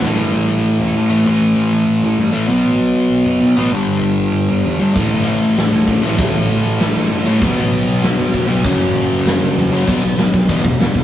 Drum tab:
CC |--------|--------|--------|--------|
SD |--------|--------|--------|--------|
BD |--------|--------|--------|--------|

CC |x-x-x-x-|x-x-x-x-|x-x-x-x-|x-x-x-x-|
SD |----o---|----o---|----o---|----o---|
BD |o-----o-|o-------|o-----o-|o-------|

CC |x-x-x-x-|
SD |--o---o-|
BD |o--ooo-o|